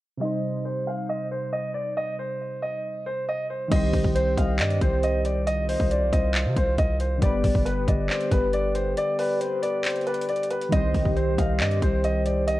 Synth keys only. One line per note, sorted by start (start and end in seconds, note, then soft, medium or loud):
0.17 3.66 C3 medium
0.17 3.67 G3 medium
0.22 3.68 D#4 medium
0.22 3.70 C5 medium
3.68 7.16 D#3 medium
3.68 7.17 G3 medium
3.68 7.18 C4 medium
3.74 7.19 G4 medium
3.74 7.20 C5 medium
7.18 10.66 D3 medium
7.18 10.67 G3 medium
7.18 10.68 B3 medium
7.23 10.69 G4 medium
7.23 10.70 B4 medium
10.69 12.60 D#3 medium
10.69 12.60 G3 medium
10.69 12.60 C4 medium
10.75 12.60 G4 medium
10.75 12.60 C5 medium